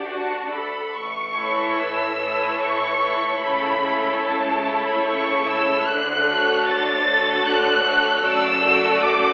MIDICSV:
0, 0, Header, 1, 6, 480
1, 0, Start_track
1, 0, Key_signature, 3, "major"
1, 0, Tempo, 887574
1, 518, Time_signature, 3, 2, 24, 8
1, 518, Tempo, 829876
1, 998, Tempo, 814111
1, 3398, Tempo, 786370
1, 5518, End_track
2, 0, Start_track
2, 0, Title_t, "Violin section"
2, 0, Program_c, 0, 48
2, 35, Note_on_c, 0, 81, 73
2, 265, Note_off_c, 0, 81, 0
2, 288, Note_on_c, 0, 83, 76
2, 517, Note_on_c, 0, 85, 90
2, 520, Note_off_c, 0, 83, 0
2, 997, Note_off_c, 0, 85, 0
2, 1004, Note_on_c, 0, 88, 93
2, 1477, Note_on_c, 0, 85, 102
2, 1479, Note_off_c, 0, 88, 0
2, 1954, Note_on_c, 0, 83, 96
2, 1959, Note_off_c, 0, 85, 0
2, 2438, Note_off_c, 0, 83, 0
2, 2442, Note_on_c, 0, 81, 95
2, 2792, Note_off_c, 0, 81, 0
2, 2809, Note_on_c, 0, 83, 85
2, 2922, Note_on_c, 0, 85, 97
2, 2924, Note_off_c, 0, 83, 0
2, 3157, Note_off_c, 0, 85, 0
2, 3172, Note_on_c, 0, 88, 105
2, 3403, Note_on_c, 0, 90, 110
2, 3405, Note_off_c, 0, 88, 0
2, 3885, Note_on_c, 0, 93, 117
2, 3889, Note_off_c, 0, 90, 0
2, 4371, Note_off_c, 0, 93, 0
2, 4376, Note_on_c, 0, 90, 124
2, 4847, Note_on_c, 0, 88, 127
2, 4849, Note_off_c, 0, 90, 0
2, 5320, Note_off_c, 0, 88, 0
2, 5325, Note_on_c, 0, 86, 112
2, 5518, Note_off_c, 0, 86, 0
2, 5518, End_track
3, 0, Start_track
3, 0, Title_t, "Violin section"
3, 0, Program_c, 1, 48
3, 0, Note_on_c, 1, 74, 58
3, 0, Note_on_c, 1, 78, 58
3, 384, Note_off_c, 1, 78, 0
3, 385, Note_off_c, 1, 74, 0
3, 748, Note_on_c, 1, 69, 56
3, 750, Note_on_c, 1, 73, 57
3, 1222, Note_off_c, 1, 69, 0
3, 1223, Note_off_c, 1, 73, 0
3, 1229, Note_on_c, 1, 69, 59
3, 1230, Note_on_c, 1, 73, 57
3, 1702, Note_off_c, 1, 69, 0
3, 1702, Note_off_c, 1, 73, 0
3, 1710, Note_on_c, 1, 73, 60
3, 1715, Note_on_c, 1, 69, 60
3, 1951, Note_off_c, 1, 73, 0
3, 1954, Note_off_c, 1, 69, 0
3, 1961, Note_on_c, 1, 69, 60
3, 1961, Note_on_c, 1, 73, 58
3, 2197, Note_off_c, 1, 69, 0
3, 2197, Note_off_c, 1, 73, 0
3, 2205, Note_on_c, 1, 69, 62
3, 2209, Note_on_c, 1, 73, 61
3, 2671, Note_off_c, 1, 69, 0
3, 2673, Note_off_c, 1, 73, 0
3, 2681, Note_on_c, 1, 73, 63
3, 2685, Note_on_c, 1, 69, 59
3, 3151, Note_off_c, 1, 73, 0
3, 3154, Note_off_c, 1, 69, 0
3, 3166, Note_on_c, 1, 69, 65
3, 3166, Note_on_c, 1, 73, 65
3, 3397, Note_off_c, 1, 73, 0
3, 3398, Note_off_c, 1, 69, 0
3, 3639, Note_on_c, 1, 73, 65
3, 3640, Note_on_c, 1, 69, 66
3, 4118, Note_off_c, 1, 69, 0
3, 4118, Note_off_c, 1, 73, 0
3, 4125, Note_on_c, 1, 73, 70
3, 4127, Note_on_c, 1, 69, 68
3, 4600, Note_off_c, 1, 73, 0
3, 4601, Note_off_c, 1, 69, 0
3, 4609, Note_on_c, 1, 69, 74
3, 4610, Note_on_c, 1, 73, 71
3, 4841, Note_off_c, 1, 69, 0
3, 4841, Note_off_c, 1, 73, 0
3, 4844, Note_on_c, 1, 74, 77
3, 4848, Note_on_c, 1, 69, 72
3, 5068, Note_off_c, 1, 69, 0
3, 5069, Note_off_c, 1, 74, 0
3, 5075, Note_on_c, 1, 69, 75
3, 5077, Note_on_c, 1, 74, 77
3, 5518, Note_off_c, 1, 69, 0
3, 5518, Note_off_c, 1, 74, 0
3, 5518, End_track
4, 0, Start_track
4, 0, Title_t, "Viola section"
4, 0, Program_c, 2, 48
4, 37, Note_on_c, 2, 66, 62
4, 278, Note_off_c, 2, 66, 0
4, 281, Note_on_c, 2, 69, 58
4, 516, Note_off_c, 2, 69, 0
4, 752, Note_on_c, 2, 64, 63
4, 753, Note_on_c, 2, 52, 64
4, 1224, Note_off_c, 2, 64, 0
4, 1225, Note_off_c, 2, 52, 0
4, 1239, Note_on_c, 2, 64, 64
4, 1240, Note_on_c, 2, 52, 61
4, 1706, Note_off_c, 2, 52, 0
4, 1707, Note_off_c, 2, 64, 0
4, 1713, Note_on_c, 2, 52, 57
4, 1713, Note_on_c, 2, 64, 61
4, 1948, Note_off_c, 2, 64, 0
4, 1952, Note_off_c, 2, 52, 0
4, 1955, Note_on_c, 2, 64, 59
4, 1956, Note_on_c, 2, 57, 57
4, 2192, Note_off_c, 2, 57, 0
4, 2193, Note_off_c, 2, 64, 0
4, 2199, Note_on_c, 2, 57, 64
4, 2200, Note_on_c, 2, 64, 64
4, 2668, Note_off_c, 2, 57, 0
4, 2668, Note_off_c, 2, 64, 0
4, 2679, Note_on_c, 2, 57, 70
4, 2679, Note_on_c, 2, 64, 70
4, 3150, Note_off_c, 2, 64, 0
4, 3151, Note_off_c, 2, 57, 0
4, 3156, Note_on_c, 2, 64, 62
4, 3160, Note_on_c, 2, 57, 66
4, 3393, Note_off_c, 2, 64, 0
4, 3394, Note_off_c, 2, 57, 0
4, 3638, Note_on_c, 2, 66, 70
4, 3640, Note_on_c, 2, 57, 69
4, 4117, Note_off_c, 2, 66, 0
4, 4118, Note_off_c, 2, 57, 0
4, 4129, Note_on_c, 2, 57, 77
4, 4133, Note_on_c, 2, 66, 79
4, 4602, Note_off_c, 2, 57, 0
4, 4603, Note_off_c, 2, 66, 0
4, 4614, Note_on_c, 2, 57, 69
4, 4614, Note_on_c, 2, 66, 75
4, 4842, Note_off_c, 2, 66, 0
4, 4843, Note_off_c, 2, 57, 0
4, 4849, Note_on_c, 2, 57, 74
4, 4849, Note_on_c, 2, 66, 75
4, 5074, Note_off_c, 2, 57, 0
4, 5074, Note_off_c, 2, 66, 0
4, 5081, Note_on_c, 2, 57, 83
4, 5081, Note_on_c, 2, 66, 85
4, 5518, Note_off_c, 2, 57, 0
4, 5518, Note_off_c, 2, 66, 0
4, 5518, End_track
5, 0, Start_track
5, 0, Title_t, "Cello section"
5, 0, Program_c, 3, 48
5, 0, Note_on_c, 3, 62, 78
5, 264, Note_off_c, 3, 62, 0
5, 525, Note_on_c, 3, 45, 78
5, 945, Note_off_c, 3, 45, 0
5, 1000, Note_on_c, 3, 45, 76
5, 1420, Note_off_c, 3, 45, 0
5, 1481, Note_on_c, 3, 45, 72
5, 1904, Note_off_c, 3, 45, 0
5, 1964, Note_on_c, 3, 49, 83
5, 2387, Note_off_c, 3, 49, 0
5, 2442, Note_on_c, 3, 49, 86
5, 2863, Note_off_c, 3, 49, 0
5, 2923, Note_on_c, 3, 49, 78
5, 3345, Note_off_c, 3, 49, 0
5, 3403, Note_on_c, 3, 50, 89
5, 3832, Note_off_c, 3, 50, 0
5, 3893, Note_on_c, 3, 50, 89
5, 4317, Note_off_c, 3, 50, 0
5, 4375, Note_on_c, 3, 50, 87
5, 4793, Note_off_c, 3, 50, 0
5, 4851, Note_on_c, 3, 42, 97
5, 5266, Note_off_c, 3, 42, 0
5, 5324, Note_on_c, 3, 42, 99
5, 5518, Note_off_c, 3, 42, 0
5, 5518, End_track
6, 0, Start_track
6, 0, Title_t, "Double bass section"
6, 0, Program_c, 4, 48
6, 0, Note_on_c, 4, 38, 61
6, 389, Note_off_c, 4, 38, 0
6, 516, Note_on_c, 4, 33, 79
6, 940, Note_off_c, 4, 33, 0
6, 994, Note_on_c, 4, 33, 69
6, 1417, Note_off_c, 4, 33, 0
6, 1474, Note_on_c, 4, 33, 70
6, 1900, Note_off_c, 4, 33, 0
6, 1958, Note_on_c, 4, 37, 84
6, 2384, Note_off_c, 4, 37, 0
6, 2439, Note_on_c, 4, 37, 78
6, 2861, Note_off_c, 4, 37, 0
6, 2918, Note_on_c, 4, 37, 74
6, 3343, Note_off_c, 4, 37, 0
6, 3401, Note_on_c, 4, 38, 92
6, 3831, Note_off_c, 4, 38, 0
6, 3888, Note_on_c, 4, 38, 84
6, 4315, Note_off_c, 4, 38, 0
6, 4372, Note_on_c, 4, 38, 91
6, 4791, Note_off_c, 4, 38, 0
6, 4842, Note_on_c, 4, 30, 102
6, 5261, Note_off_c, 4, 30, 0
6, 5315, Note_on_c, 4, 30, 97
6, 5518, Note_off_c, 4, 30, 0
6, 5518, End_track
0, 0, End_of_file